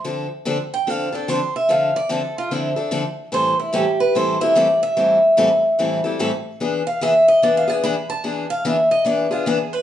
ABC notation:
X:1
M:4/4
L:1/8
Q:"Swing" 1/4=147
K:Am
V:1 name="Steel-string acoustic guitar"
z3 g f A c e | f d A F E z3 | c E G B c e d e- | e4 z4 |
z f e ^d (3=d f ^g b a | ^g f e ^d =d F ^G B |]
V:2 name="Steel-string acoustic guitar"
[D,F,CDA] z [D,F,CDA] z [D,F,CDA] [CDA] [D,F,CDA] z | [D,F,CDA] z [D,F,CDA] z [D,F,CDA] [CDA] [D,F,CDA] z | [A,,E,G,CEA] z [A,,E,G,CEA] z [A,,E,G,CEA] [G,CEA] [A,,E,G,CEA] z | [A,,E,G,CEA] z [A,,E,G,CEA] z [A,,E,G,CEA] [G,CEA] [A,,E,G,CEA] z |
[E,B,D^G] z [E,B,DG] z [E,B,DG] [B,DG] [E,B,DG] z | [E,B,D^G] z [E,B,DG] z [E,B,DG] [B,DG] [E,B,DG] z |]